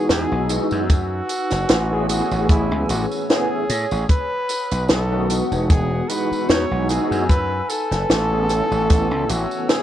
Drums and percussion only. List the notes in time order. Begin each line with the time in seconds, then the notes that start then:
0.09 snare, closed hi-hat, tambourine
0.49 closed hi-hat, tambourine
0.71 tambourine
0.89 kick, closed hi-hat, tambourine
1.29 closed hi-hat, tambourine
1.50 snare, closed hi-hat, tambourine
1.69 snare, closed hi-hat, tambourine
2.09 closed hi-hat, tambourine
2.31 tambourine
2.49 kick, closed hi-hat, tambourine
2.89 closed hi-hat, tambourine
3.11 tambourine
3.30 snare, closed hi-hat, tambourine
3.69 closed hi-hat, tambourine
3.91 tambourine
4.09 kick, closed hi-hat, tambourine
4.49 closed hi-hat, tambourine
4.71 closed hi-hat, tambourine
4.88 snare, closed hi-hat, tambourine
5.30 closed hi-hat, tambourine
5.52 tambourine
5.70 kick, closed hi-hat, tambourine
6.09 closed hi-hat, tambourine
6.33 tambourine
6.49 snare, closed hi-hat, tambourine
6.89 closed hi-hat, tambourine
7.12 tambourine
7.29 kick, closed hi-hat, tambourine
7.70 closed hi-hat, tambourine
7.92 snare, closed hi-hat, tambourine
8.10 snare, closed hi-hat, tambourine
8.49 closed hi-hat, tambourine
8.72 tambourine
8.90 kick, closed hi-hat, tambourine
9.29 closed hi-hat, tambourine
9.51 tambourine
9.69 snare, closed hi-hat, tambourine